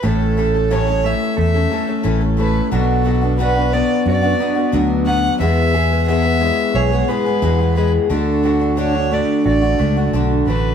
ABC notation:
X:1
M:4/4
L:1/16
Q:1/4=89
K:A
V:1 name="Fiddle"
A4 c2 e2 e4 z2 B2 | A4 B2 d2 d4 z2 f2 | e4 e4 c2 B4 B2 | A4 c2 d2 d4 z2 B2 |]
V:2 name="Twelve-string acoustic guitar"
[A,,E,A,CA]2 [E,A,CA] [A,CA] [A,,E,A,CA] [A,CA] [E,A,CA]3 [A,CA] [E,A,CA] [A,CA] [A,,E,A,CA] [A,CA] [E,A,CA]2 | [B,,F,B,DF]2 [F,B,DF] [B,DF] [B,,F,B,DF] [B,DF] [F,B,DF]3 [B,DF] [F,B,DF] [B,DF] [B,,F,B,DF]2 [F,B,DF]2 | [E,,B,,E,G,B,G]2 [E,G,B,G] [E,G,B,G] [E,,B,,E,G,B,G] [E,G,B,G] [E,G,B,G]3 [E,G,B,G] [E,G,B,G] [E,G,B,G] [E,,B,,E,G,B,G] [E,G,B,G] [E,G,B,G]2 | [D,A,DF]2 [D,A,DF] [A,DF] [D,A,DF] [A,DF] [D,A,DF]3 [A,DF] [D,A,DF] [A,DF] [D,A,DF]2 [D,A,DF]2 |]
V:3 name="Clean electric guitar"
A,,2 A2 C2 A,2 A2 A,2 E,2 A,2 | B,,2 F2 D2 B,2 F2 B,2 F,2 B,2 | E,,2 G2 B,2 G,2 G2 G,2 E,2 G,2 | D,2 F2 D2 A,2 F2 A,2 D,2 A,2 |]
V:4 name="Fingered electric bass" clef=bass
A,,,8 E,,2 z2 A,,,4 | B,,,8 F,,2 z2 D,,4 | E,,8 B,,,2 z2 E,,4 | D,,8 A,,,2 C,,2 B,,,2 A,,,2 |]